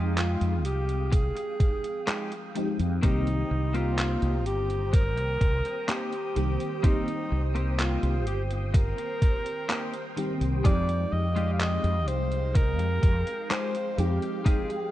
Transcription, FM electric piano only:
0.00 2.55 F3 medium
0.00 2.55 G#3 medium
0.00 2.56 C4 medium
0.00 2.56 D#4 medium
0.00 3.05 G5 medium
2.55 2.97 F3 medium
2.55 2.97 G#3 medium
2.55 2.97 C4 medium
2.55 2.98 D#4 medium
2.55 2.98 G4 loud
3.02 6.30 D#3 medium
3.02 6.30 G3 medium
3.02 6.31 A#3 medium
3.02 6.31 C4 medium
3.02 6.32 G4 medium
6.36 6.78 D#3 medium
6.36 6.78 G3 medium
6.36 6.78 A#3 medium
6.36 6.79 C4 medium
6.36 6.79 G4 medium
6.83 10.11 D#3 medium
6.83 10.11 G3 medium
6.83 10.12 A#3 medium
6.83 10.12 C4 medium
6.83 10.12 G4 medium
10.16 10.59 D#3 medium
10.16 10.59 G3 medium
10.16 10.59 A#3 medium
10.16 10.59 C4 medium
10.16 10.60 G4 medium
10.63 13.92 F3 medium
10.63 13.92 G#3 medium
10.63 13.93 C4 medium
10.63 13.93 D#4 medium
10.63 13.93 G4 medium
13.98 14.40 F3 medium
13.98 14.40 G#3 medium
13.98 14.40 C4 medium
13.98 14.40 D#4 medium
13.98 14.41 G4 loud
14.44 14.91 F3 medium
14.44 14.91 G#3 medium
14.44 14.91 C4 medium
14.44 14.91 D#4 medium
14.44 14.91 G5 medium

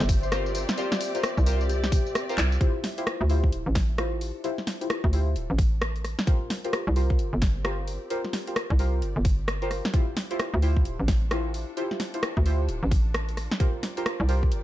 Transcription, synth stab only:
0.00 0.30 F4 medium
0.00 0.30 G4 medium
0.00 0.30 A#4 medium
0.00 0.30 C5 loud
0.32 0.75 F4 medium
0.32 0.75 G4 medium
0.32 0.75 A#4 medium
0.32 0.75 C5 medium
0.77 0.88 F4 loud
0.77 0.88 G4 medium
0.77 0.88 A#4 medium
0.77 0.88 C5 loud
1.15 1.25 F4 medium
1.15 1.25 G4 medium
1.15 1.25 A#4 medium
1.15 1.25 C5 medium
1.46 1.62 F4 loud
1.46 1.62 G4 medium
1.46 1.62 A#4 medium
1.46 1.62 C5 loud
2.29 2.35 F4 loud
2.29 2.35 G4 loud
2.29 2.35 A#4 medium
2.29 2.35 C5 loud
2.61 2.71 E4 medium
2.61 2.71 F4 medium
2.61 2.71 G4 medium
2.61 2.71 C5 loud
2.98 3.04 E4 medium
2.98 3.04 F4 medium
2.98 3.04 G4 medium
2.98 3.04 C5 loud
3.29 3.96 E4 medium
3.29 3.96 F4 medium
3.29 3.96 G4 medium
3.29 3.96 C5 loud
3.98 4.42 E4 medium
3.98 4.42 F4 medium
3.98 4.42 G4 medium
3.98 4.42 C5 medium
4.44 4.54 E4 loud
4.44 4.54 F4 medium
4.44 4.54 G4 medium
4.44 4.54 C5 loud
4.81 4.92 E4 medium
4.81 4.92 F4 medium
4.81 4.92 G4 medium
4.81 4.92 C5 medium
5.13 5.28 E4 medium
5.13 5.28 F4 medium
5.13 5.28 G4 medium
5.13 5.28 C5 loud
6.27 6.37 F4 medium
6.27 6.37 G4 medium
6.27 6.37 A#4 medium
6.27 6.37 C5 medium
6.64 6.71 F4 medium
6.64 6.71 G4 medium
6.64 6.71 A#4 medium
6.64 6.71 C5 loud
6.96 7.63 F4 medium
6.96 7.63 G4 medium
6.96 7.63 A#4 medium
6.96 7.63 C5 loud
7.64 8.08 F4 medium
7.64 8.08 G4 medium
7.64 8.08 A#4 medium
7.64 8.08 C5 medium
8.10 8.21 F4 loud
8.10 8.21 G4 medium
8.10 8.21 A#4 medium
8.10 8.21 C5 loud
8.47 8.58 F4 medium
8.47 8.58 G4 medium
8.47 8.58 A#4 medium
8.47 8.58 C5 medium
8.79 8.95 F4 loud
8.79 8.95 G4 medium
8.79 8.95 A#4 medium
8.79 8.95 C5 loud
9.62 9.68 F4 loud
9.62 9.68 G4 medium
9.62 9.68 A#4 medium
9.62 9.68 C5 loud
9.94 10.04 E4 medium
9.94 10.04 F4 medium
9.94 10.04 G4 medium
9.94 10.04 C5 medium
10.31 10.37 E4 medium
10.31 10.37 F4 medium
10.31 10.37 G4 medium
10.31 10.37 C5 loud
10.62 11.29 E4 medium
10.62 11.29 F4 medium
10.62 11.29 G4 medium
10.62 11.29 C5 loud
11.31 11.75 E4 medium
11.31 11.75 F4 medium
11.31 11.75 G4 medium
11.31 11.75 C5 medium
11.77 11.87 E4 loud
11.77 11.87 F4 medium
11.77 11.87 G4 medium
11.77 11.87 C5 loud
12.14 12.25 E4 medium
12.14 12.25 F4 medium
12.14 12.25 G4 medium
12.14 12.25 C5 medium
12.46 12.61 E4 medium
12.46 12.61 F4 medium
12.46 12.61 G4 medium
12.46 12.61 C5 loud
13.60 13.70 F4 medium
13.60 13.70 G4 medium
13.60 13.70 A#4 medium
13.60 13.70 C5 medium
13.97 14.03 F4 medium
13.97 14.03 G4 medium
13.97 14.03 A#4 medium
13.97 14.03 C5 loud
14.29 14.63 F4 medium
14.29 14.63 G4 medium
14.29 14.63 A#4 medium
14.29 14.63 C5 loud

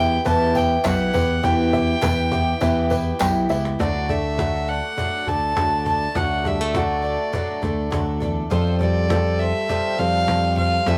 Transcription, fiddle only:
0.00 0.22 G5 loud
0.28 0.58 A5 medium
0.57 0.85 G5 medium
0.87 1.47 F#5 medium
1.45 3.21 G5 medium
3.80 4.12 D5 medium
4.10 4.71 E5 medium
4.69 5.30 F#5 medium
5.28 5.87 A5 medium
5.88 6.18 A5 medium
6.17 6.49 F#5 medium
6.47 6.78 E5 medium
6.77 7.94 D5 medium
8.52 8.79 C5 medium
8.81 9.41 D5 medium
9.40 10.00 E5 medium
9.99 10.57 F5 loud
10.57 10.90 F5 medium
10.88 10.98 E5 medium

